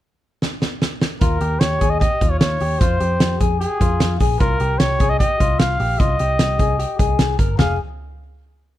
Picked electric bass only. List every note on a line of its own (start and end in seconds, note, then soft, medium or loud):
1.22 1.38 D#2 medium
1.41 1.58 D#2 medium
1.61 1.78 D#2 medium
1.81 2.06 D#2 medium
2.21 2.38 D#2 medium
2.41 2.57 D#2 medium
2.61 2.77 D#2 medium
2.81 2.97 F2 loud
3.01 3.17 F2 medium
3.21 3.37 F2 medium
3.41 3.65 F2 medium
3.81 3.97 F2 loud
4.00 4.17 F2 medium
4.20 4.37 A#1 medium
4.40 4.57 C2 loud
4.60 4.77 C2 medium
4.80 4.97 C2 medium
5.00 5.25 C2 medium
5.40 5.57 C2 medium
5.60 5.77 C2 medium
5.80 5.96 A#1 medium
6.00 6.16 C2 loud
6.20 6.36 C2 medium
6.40 6.56 C2 medium
6.59 6.84 C2 medium
6.99 7.16 C2 medium
7.19 7.35 C2 medium
7.39 7.55 G1 medium
7.59 7.77 F1 medium